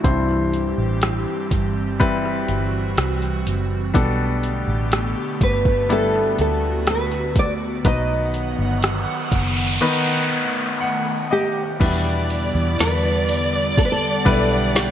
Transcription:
0.00 1.47 G2 medium
0.00 3.91 E3 medium
0.00 1.90 G3 medium
0.00 1.90 C4 medium
0.00 3.43 E4 medium
0.04 0.74 C2 medium
0.04 3.91 G3 medium
0.04 3.91 C4 medium
0.04 1.90 E4 medium
0.04 1.99 G4 medium
0.04 1.91 C5 medium
0.04 kick medium
0.04 closed hi-hat medium
0.54 closed hi-hat medium
0.78 1.24 A1 medium
1.02 cross-stick medium
1.02 closed hi-hat medium
1.51 2.45 G1 medium
1.51 kick medium
1.51 closed hi-hat medium
1.99 3.85 G3 medium
1.99 3.85 C4 medium
1.99 3.85 E4 medium
1.99 3.93 F#4 medium
1.99 3.85 B4 medium
1.99 kick medium
1.99 closed hi-hat medium
2.26 cross-stick soft
2.49 2.94 G1 medium
2.49 closed hi-hat medium
2.97 3.43 C2 medium
2.97 cross-stick medium
2.97 closed hi-hat medium
3.22 closed hi-hat soft
3.46 3.92 F#1 medium
3.46 closed hi-hat medium
3.94 4.64 B1 medium
3.94 5.37 B2 medium
3.94 7.81 D3 medium
3.94 5.79 G3 medium
3.94 7.81 A3 medium
3.94 5.80 B3 medium
3.94 7.81 B3 medium
3.94 5.80 D4 medium
3.94 5.88 G4 medium
3.94 5.80 A4 medium
3.94 kick medium
3.94 closed hi-hat medium
4.43 closed hi-hat medium
4.68 5.13 A1 medium
4.92 cross-stick medium
4.92 closed hi-hat medium
5.41 6.34 G1 medium
5.41 5.87 B4 medium
5.41 kick medium
5.41 closed hi-hat medium
5.65 kick medium
5.89 7.75 G3 medium
5.89 7.75 B3 medium
5.89 7.75 D4 medium
5.89 7.75 E4 medium
5.89 7.83 F#4 medium
5.89 6.40 A4 medium
5.89 closed hi-hat medium
6.16 cross-stick soft
6.39 7.81 D2 medium
6.39 6.90 A4 medium
6.39 closed hi-hat medium
6.87 7.39 B4 medium
6.87 cross-stick medium
6.87 closed hi-hat medium
7.12 closed hi-hat soft
7.36 7.52 D5 medium
7.36 kick medium
7.36 closed hi-hat medium
7.84 8.54 B1 medium
7.84 11.76 D#3 medium
7.84 9.71 F#3 medium
7.84 9.79 B3 medium
7.84 9.71 B3 medium
7.84 9.72 D#4 medium
7.84 9.72 B4 medium
7.84 9.78 D#5 loud
7.84 11.76 F#5 medium
7.84 kick medium
7.84 closed hi-hat medium
7.84 noise sweep medium
8.34 closed hi-hat medium
8.59 9.04 G1 medium
8.83 cross-stick loud
8.83 closed hi-hat medium
9.32 9.78 F#1 medium
9.32 kick medium
9.32 closed hi-hat medium
9.56 closed hi-hat soft
9.81 11.70 D#3 medium
9.81 11.78 A3 medium
9.81 11.70 B3 medium
9.81 11.71 D#4 medium
9.81 11.71 B4 medium
10.80 11.27 F#5 medium
11.31 12.80 G4 loud
11.31 11.77 D#5 medium
11.79 12.51 E2 medium
11.79 13.24 B2 medium
11.79 14.91 D3 medium
11.79 14.91 G3 medium
11.79 13.67 G3 medium
11.79 14.91 B3 medium
11.79 13.67 D4 medium
11.79 13.74 E4 medium
11.79 13.67 E4 medium
11.79 13.67 B4 medium
11.79 14.91 D5 medium
11.79 kick medium
11.79 crash medium
11.79 ride medium
12.30 ride medium
12.55 12.78 E2 loud
12.79 14.22 E2 medium
12.79 13.78 B4 loud
12.79 snare medium
12.79 ride medium
13.29 ride medium
13.77 13.84 A4 medium
13.77 14.91 F#5 medium
13.77 kick medium
13.77 ride medium
13.85 13.91 B4 medium
13.92 14.71 A4 medium
14.25 14.91 B1 medium
14.25 14.91 G3 medium
14.25 14.91 D4 medium
14.25 14.91 E4 medium
14.25 14.91 B4 medium
14.25 kick medium
14.25 ride medium
14.75 14.88 G4 medium
14.75 snare loud
14.75 ride medium

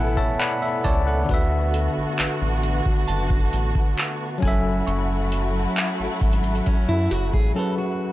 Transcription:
0.00 0.35 A1 loud
0.00 0.33 B2 medium
0.00 4.38 A3 medium
0.00 0.35 B3 medium
0.00 4.38 B3 medium
0.00 1.03 E4 medium
0.00 1.25 E4 medium
0.00 0.16 A4 medium
0.00 0.16 F#5 medium
0.00 1.31 G#5 medium
0.00 0.17 A5 medium
0.00 0.40 B5 medium
0.17 0.39 C#5 medium
0.17 0.38 E5 medium
0.17 0.38 A5 medium
0.17 kick medium
0.40 0.82 D5 medium
0.40 0.60 F#5 medium
0.40 0.82 B5 medium
0.40 clap loud
0.40 closed hi-hat medium
0.62 0.83 E5 medium
0.84 1.24 C#2 loud
0.84 1.06 C#5 medium
0.84 1.26 D5 medium
0.84 1.06 A5 medium
0.84 kick medium
0.84 closed hi-hat medium
1.07 1.50 A4 medium
1.07 1.49 F#5 medium
1.24 4.36 D3 medium
1.24 4.37 D4 medium
1.29 1.89 D2 loud
1.29 4.39 D3 medium
1.29 4.38 F#4 medium
1.29 4.40 F#4 medium
1.29 4.40 B4 medium
1.29 kick loud
1.29 closed hi-hat medium
1.34 4.41 E5 medium
1.74 closed hi-hat medium
1.97 2.06 A1 medium
2.19 2.28 A1 medium
2.19 clap loud
2.19 closed hi-hat medium
2.42 2.81 A1 medium
2.63 closed hi-hat medium
2.86 kick medium
3.08 3.48 F#1 medium
3.08 4.83 A5 medium
3.08 closed hi-hat medium
3.30 kick medium
3.53 3.73 A1 loud
3.53 closed hi-hat medium
3.75 kick medium
3.98 clap loud
3.98 closed hi-hat medium
4.38 7.50 F#3 medium
4.38 7.51 C#4 medium
4.42 4.82 F#1 loud
4.42 8.12 F#3 medium
4.42 8.12 A3 medium
4.42 8.12 E4 medium
4.42 8.12 F#4 medium
4.42 7.53 A4 medium
4.42 7.52 G#5 medium
4.42 kick loud
4.42 closed hi-hat medium
4.48 7.54 E5 medium
4.87 5.67 F#1 loud
4.87 7.02 C#6 medium
4.87 closed hi-hat medium
5.32 closed hi-hat medium
5.77 clap loud
5.77 closed hi-hat medium
5.99 6.08 G#1 soft
6.21 6.61 G#1 medium
6.21 kick loud
6.21 closed hi-hat medium
6.21 open hi-hat medium
6.33 closed hi-hat medium
6.44 closed hi-hat medium
6.55 closed hi-hat medium
6.66 6.88 C#4 medium
6.66 kick loud
6.66 closed hi-hat medium
6.89 7.09 F#2 loud
6.89 7.11 E4 medium
7.11 7.31 F#1 loud
7.11 7.32 F#4 medium
7.11 closed hi-hat medium
7.34 7.54 A1 medium
7.34 7.55 G#4 medium
7.34 kick medium
7.54 8.12 F#3 medium
7.54 8.12 C#4 medium
7.54 8.12 G#4 medium
7.54 7.77 A4 medium
7.54 8.12 A4 medium
7.59 8.12 B4 medium
7.78 8.12 F#4 medium

